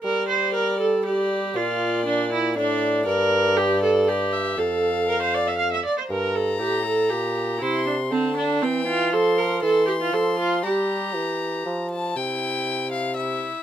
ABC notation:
X:1
M:3/4
L:1/16
Q:1/4=119
K:Gdor
V:1 name="Violin"
d8 d4 | d8 d4 | d8 d2 e2 | f8- f2 z2 |
b12 | c'4 a4 g4 | c'4 c'8 | b8- b2 a2 |
g6 f2 e4 |]
V:2 name="Viola"
B2 c2 B2 A2 G4 | F4 D2 E2 D4 | B4 G2 A2 G4 | A4 B c d e f e d c |
B2 A2 G2 A2 G4 | E2 D2 C2 D2 C2 F2 | A2 B2 A2 G F A2 F2 | G8 z4 |
E8 E4 |]
V:3 name="Bassoon" clef=bass
G,12 | B,,8 A,,4 | G,,12 | F,,8- F,,2 z2 |
G,,4 A,,4 B,,4 | C,4 D,4 E,4 | F,4 E,4 F,4 | G,4 E,4 F,4 |
C,12 |]